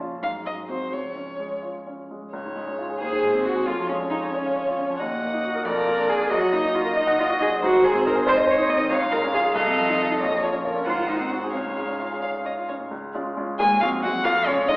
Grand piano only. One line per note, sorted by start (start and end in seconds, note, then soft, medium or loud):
0.00 0.21 A#1 soft
0.00 0.14 F3 soft
0.00 0.21 C#4 soft
0.00 0.21 F4 soft
0.22 0.90 G#2 soft
0.45 0.83 G#3 soft
0.68 0.90 C4 soft
0.68 0.90 F#4 soft
0.92 2.28 C#2 soft
1.15 1.53 C#4 soft
1.40 1.77 G#3 soft
1.63 2.00 F4 soft
1.87 2.24 C#4 soft
2.11 2.33 G#3 soft
2.33 2.98 C#2 soft
2.45 2.62 G#2 soft
2.56 2.73 G#3 soft
2.67 2.85 C#4 soft
2.79 2.96 F4 soft
2.90 3.00 G#4 soft
3.01 3.65 D#2 soft
3.12 3.29 D#3 soft
3.24 3.41 G#3 soft
3.34 3.51 C4 soft
3.45 3.62 F#4 soft
3.56 3.67 G#4 soft
3.68 4.97 F2 medium
3.79 3.96 F3 soft
3.91 4.07 G#3 soft
4.01 4.18 C#4 soft
4.12 4.29 F4 soft
4.23 4.40 G#4 soft
4.34 4.52 C#5 soft
4.46 4.63 F5 soft
4.56 4.74 C#5 soft
4.68 4.85 F4 soft
4.79 4.96 C#4 soft
4.90 5.00 F3 soft
5.00 5.63 D#2 soft
5.11 5.28 A#2 soft
5.22 5.39 A#3 soft
5.34 5.50 D#4 soft
5.44 5.61 F#4 soft
5.55 5.65 A#4 soft
5.65 6.29 F2 medium
5.76 5.93 F3 soft
5.87 6.04 A#3 soft
5.98 6.16 D4 soft
6.08 6.26 G#4 soft
6.21 6.31 A#4 soft
6.31 7.58 F#2 medium
6.42 6.59 F#3 soft
6.53 6.70 A#3 soft
6.64 6.81 D#4 medium
6.75 6.92 F#4 medium
6.85 7.03 A#4 medium
6.97 7.14 D#5 medium
7.07 7.25 F#5 medium
7.19 7.36 D#5 medium
7.30 7.47 F#4 medium
7.40 7.58 D#4 medium
7.51 7.62 F#3 soft
7.63 8.87 G#2 medium
7.73 7.90 D#3 medium
7.83 8.01 G#3 medium
7.94 8.12 C4 medium
8.06 8.23 D#4 medium
8.15 8.33 G#4 medium
8.27 8.44 C5 medium
8.37 8.55 D#5 medium
8.47 8.65 C5 medium
8.58 8.76 D#4 medium
8.69 8.86 C4 medium
8.79 8.90 D#3 medium
8.90 9.53 C#2 medium
9.01 9.18 G#2 soft
9.13 9.30 G#3 medium
9.23 9.41 C#4 medium
9.34 9.51 F4 medium
9.45 9.55 G#4 medium
9.55 10.18 C2 medium
9.66 9.84 C3 soft
9.78 9.95 F3 medium
9.89 10.05 D#4 medium
9.99 10.16 F4 soft
10.11 10.21 D#4 soft
10.21 10.84 A#1 medium
10.31 10.49 F2 soft
10.42 10.60 F3 soft
10.53 10.70 C#4 soft
10.65 10.82 F4 medium
10.76 10.87 C#4 soft
10.87 11.52 G#2 medium
10.99 11.16 D#3 soft
11.10 11.27 G#3 soft
11.20 11.38 C4 soft
11.32 11.50 F#4 soft
11.44 11.54 G#4 soft
11.55 12.88 C#2 soft
11.66 11.84 G#2 soft
11.77 11.95 G#3 soft
11.88 12.06 C#4 soft
12.00 12.18 F4 soft
12.12 12.30 G#4 soft
12.22 12.41 C#5 soft
12.34 12.52 F5 soft
12.45 12.64 C#5 soft
12.57 12.76 F4 soft
12.69 12.87 C#4 soft
12.79 12.91 G#2 soft
12.91 13.13 C#2 medium
13.14 13.35 G#3 soft
13.14 13.35 C#4 soft
13.14 13.35 F4 medium
13.37 13.57 G#3 soft
13.37 13.58 C#4 soft
13.37 13.58 F4 medium
13.60 13.81 D#2 medium
13.82 14.01 G#3 soft
13.82 14.02 C4 soft
13.82 14.02 F#4 medium
14.03 14.23 G#3 soft
14.03 14.23 C4 soft
14.03 14.23 F#4 medium
14.25 14.46 F2 medium
14.46 14.66 G#3 soft
14.46 14.67 C#4 soft
14.46 14.67 F4 medium
14.68 14.77 G#3 soft
14.68 14.77 C#4 medium
14.68 14.77 F4 medium